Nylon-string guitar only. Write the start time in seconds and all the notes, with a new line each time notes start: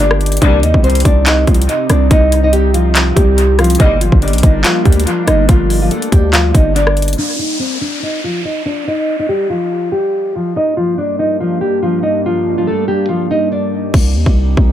0.00 D4 D5
0.42 D4 D5
0.63 D#4 D#5
0.83 C4 C5
1.05 D4 D5
1.27 D#4 D#5
1.48 F3 F4
1.69 D#4 D#5
1.89 D4 D5
2.11 D#4 D#5
2.43 D#4 D#5
2.53 G3 G4
2.74 F3 F4
3.16 G3 G4
3.59 F3 F4
3.80 D#4 D#5
4.01 F3 F4
4.22 D4 D5
4.43 D#4 D#5
4.64 F3 F4
4.85 G3 G4
5.06 F3 F4
5.27 D#4 D#5
5.50 F3 F4
5.82 F3 F4
5.91 A3 A4
6.12 G3 G4
6.33 F3 F4
6.55 D#4 D#5
6.76 D4 D5
7.18 D4 D5
7.39 D#4 D#5
7.59 C4 C5
7.81 D4 D5
8.03 D#4 D#5
8.24 F3 F4
8.45 D#4 D#5
8.66 D4 D5
8.88 D#4 D#5
9.19 D#4 D#5
9.29 G3 G4
9.50 F3 F4
9.92 G3 G4
10.35 F3 F4
10.56 D#4 D#5
10.77 F3 F4
10.98 D4 D5
11.19 D#4 D#5
11.40 F3 F4
11.61 G3 G4
11.83 F3 F4
12.03 D#4 D#5
12.26 F3 F4
12.58 F3 F4
12.67 A3 A4
12.88 G3 G4
13.09 F3 F4
13.31 D#4 D#5
13.52 D4 D5